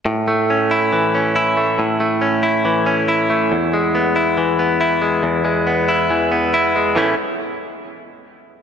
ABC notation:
X:1
M:4/4
L:1/8
Q:1/4=139
K:A
V:1 name="Clean electric guitar"
A,, A, C E E, C E A, | A,, A, C E E, C E A, | E,, G, B, E E, B, E G, | E,, G, B, E E, B, E G, |
[A,,E,A,CE] z6 z |]